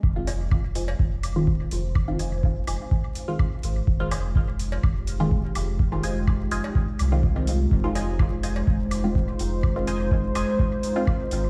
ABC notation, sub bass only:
X:1
M:4/4
L:1/16
Q:1/4=125
K:Fm
V:1 name="Sub bass" clef=bass
F,,,8 F,,,3 E,,,3 F,,,2- | F,,,6 F,,, z6 z A,,, z | F,,,8 F,,,3 E,,,3 F,,,2- | F,,,6 F,,, z3 C,,6 |
F,,,8 F,,,3 E,,,3 F,,,2- | F,,,6 F,,, z6 z A,,, z |]